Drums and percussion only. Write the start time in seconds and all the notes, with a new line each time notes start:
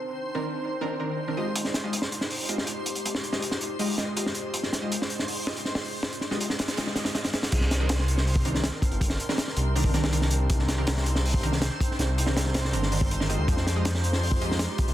1.56 closed hi-hat
1.65 snare
1.74 snare, closed hi-hat
1.93 closed hi-hat
2.02 snare
2.12 closed hi-hat
2.21 snare
2.30 open hi-hat
2.49 closed hi-hat
2.58 snare
2.67 closed hi-hat
2.86 closed hi-hat
2.95 closed hi-hat
3.06 closed hi-hat
3.15 snare
3.24 closed hi-hat
3.33 snare
3.42 closed hi-hat
3.51 snare
3.61 closed hi-hat
3.79 open hi-hat
3.98 snare, closed hi-hat
4.17 closed hi-hat
4.26 snare
4.35 closed hi-hat
4.54 closed hi-hat
4.63 snare
4.73 snare, closed hi-hat
4.92 closed hi-hat
5.02 snare
5.10 closed hi-hat
5.19 snare
5.28 open hi-hat
5.47 snare
5.57 closed hi-hat
5.65 snare
5.75 snare
5.84 open hi-hat
6.03 snare
6.13 closed hi-hat
6.21 snare
6.31 snare
6.40 closed hi-hat
6.50 snare
6.59 snare, closed hi-hat
6.68 snare, closed hi-hat
6.77 snare, closed hi-hat
6.87 snare
6.96 snare, closed hi-hat
7.05 snare, closed hi-hat
7.15 snare, closed hi-hat
7.24 snare, closed hi-hat
7.33 snare, closed hi-hat
7.43 snare, closed hi-hat
7.52 kick, closed hi-hat, crash
7.61 snare
7.71 snare, closed hi-hat
7.89 snare, closed hi-hat
7.99 snare
8.08 closed hi-hat
8.18 snare
8.27 open hi-hat
8.36 kick
8.45 closed hi-hat
8.55 snare
8.64 snare, closed hi-hat
8.82 kick, closed hi-hat
8.91 closed hi-hat
9.01 kick, closed hi-hat
9.10 snare
9.20 closed hi-hat
9.29 snare
9.38 snare, closed hi-hat
9.48 snare
9.56 closed hi-hat
9.76 open hi-hat
9.84 kick
9.94 snare, closed hi-hat
10.04 snare
10.13 closed hi-hat
10.22 snare
10.31 closed hi-hat
10.50 kick, closed hi-hat
10.59 snare
10.68 snare, closed hi-hat
10.87 snare, closed hi-hat
10.97 snare
11.06 closed hi-hat
11.16 snare
11.25 open hi-hat
11.34 kick
11.43 closed hi-hat
11.53 snare
11.62 snare, closed hi-hat
11.81 kick, closed hi-hat
11.91 snare
11.99 snare, closed hi-hat
12.18 closed hi-hat
12.26 snare
12.37 snare, closed hi-hat
12.46 snare
12.54 snare, closed hi-hat
12.65 snare
12.73 closed hi-hat
12.83 snare
12.92 open hi-hat
13.01 kick
13.11 closed hi-hat
13.21 snare
13.30 closed hi-hat
13.48 kick, closed hi-hat
13.57 snare
13.67 snare, closed hi-hat
13.85 snare, closed hi-hat
13.95 snare
14.04 closed hi-hat
14.13 snare
14.23 open hi-hat
14.31 kick
14.42 closed hi-hat
14.51 snare
14.59 snare, closed hi-hat
14.78 kick, closed hi-hat
14.88 closed hi-hat